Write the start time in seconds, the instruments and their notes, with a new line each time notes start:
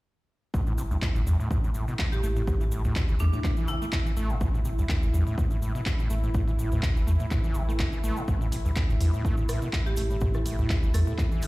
0.54 analog synth bass A1, acid bass A2, ambient pad E4, analog synth pad E4, kick, cabasa
0.67 acid bass A2, ambient pad A4, cabasa
0.78 acid bass C3, ambient pad E5, cabasa
0.91 analog synth bass D2, acid bass G2, cabasa
1.02 acid bass A2, kick, clap, cabasa
1.15 analog synth bass G1, acid bass A2, cabasa
1.26 analog synth bass E2, acid bass G2, cabasa
1.40 acid bass A2, cabasa
1.51 acid bass A2, kick, cabasa
1.64 acid bass A2, cabasa
1.74 acid bass A2, cabasa
1.88 acid bass B2, cabasa
1.99 acid bass A2, kick, clap, cabasa
2.12 acid bass A2, marimba G4, cabasa
2.23 analog synth bass A1, acid bass A3, marimba G4, cabasa
2.36 acid bass A2, cabasa
2.47 analog synth bass A1, acid bass A2, kick, cabasa
2.61 acid bass E3, cabasa
2.72 acid bass A2, cabasa
2.85 analog synth bass D2, acid bass A2, cabasa
2.96 acid bass B2, kick, clap, cabasa
3.09 analog synth bass G1, acid bass E3, cabasa
3.19 analog synth bass E2, acid bass A3, marimba D4, cabasa
3.33 acid bass A2, marimba D4, cabasa
3.44 acid bass A2, kick, clap, cabasa
3.57 acid bass E3, cabasa
3.68 acid bass C3, marimba E4, cabasa
3.82 acid bass A3, cabasa
3.92 acid bass B2, kick, clap, cabasa
4.06 acid bass E3, cabasa
4.17 analog synth bass A1, acid bass A3, cabasa
4.30 acid bass A2, cabasa
4.41 analog synth bass A1, acid bass A2, kick, cabasa
4.54 acid bass A2, cabasa
4.65 acid bass C3, ambient pad B4, cabasa
4.78 analog synth bass D2, acid bass G2, cabasa
4.89 acid bass A2, kick, clap, cabasa
5.03 analog synth bass G1, acid bass A2, cabasa
5.14 analog synth bass E2, acid bass G2, cabasa
5.27 acid bass A2, cabasa
5.38 acid bass A2, kick, cabasa
5.51 acid bass A2, cabasa
5.62 acid bass A2, cabasa
5.75 acid bass B2, cabasa
5.86 acid bass A2, kick, clap, cabasa
5.99 acid bass A2, cabasa
6.10 analog synth bass A1, acid bass A3, cabasa
6.23 acid bass A2, cabasa
6.34 analog synth bass A1, acid bass A2, kick, cabasa
6.48 acid bass E3, cabasa
6.59 acid bass A2, cabasa
6.72 analog synth bass D2, acid bass A2, cabasa
6.83 acid bass B2, kick, clap, cabasa
6.96 analog synth bass G1, acid bass E3, cabasa
7.07 analog synth bass E2, acid bass A3, cabasa
7.20 acid bass A2, cabasa
7.31 acid bass A2, analog synth bass A2, kick, clap, cabasa
7.44 acid bass E3, cabasa
7.54 analog synth bass A1, acid bass C3, cabasa
7.69 acid bass A3, cabasa
7.79 acid bass B2, kick, clap, cabasa
7.93 acid bass E3, cabasa
8.04 acid bass A3, cabasa
8.17 acid bass A2, cabasa
8.28 analog synth bass A1, acid bass A2, kick, cabasa
8.41 acid bass A2, cabasa
8.52 acid bass C3, ambient pad E5, open hi-hat, cabasa
8.65 analog synth bass D2, acid bass G2, cabasa
8.76 acid bass A2, kick, clap, cabasa
8.89 analog synth bass G1, acid bass A2, cabasa
9.00 analog synth bass E2, acid bass G2, open hi-hat, cabasa
9.14 acid bass A2, cabasa
9.25 acid bass A3, kick, cabasa
9.37 acid bass A2, cabasa
9.49 acid bass A2, cross-stick, open hi-hat, cabasa
9.62 acid bass B2, cabasa
9.73 acid bass A2, kick, clap, cabasa
9.86 acid bass A2, marimba G4, cabasa
9.96 analog synth bass A1, acid bass A3, marimba G4, open hi-hat, cabasa
10.10 acid bass A2, cabasa
10.21 analog synth bass A1, acid bass A2, kick, cabasa
10.34 acid bass E3, cross-stick, cabasa
10.46 acid bass A2, open hi-hat, cabasa
10.59 analog synth bass D2, acid bass A2, cabasa
10.70 acid bass B2, kick, clap, cabasa
10.83 analog synth bass G1, acid bass E3, cabasa
10.94 analog synth bass E2, acid bass A3, marimba A4, cross-stick, open hi-hat, cabasa
11.07 acid bass A2, cabasa
11.18 acid bass A2, kick, clap, cabasa
11.31 acid bass E3, cabasa
11.42 acid bass C3, open hi-hat, cabasa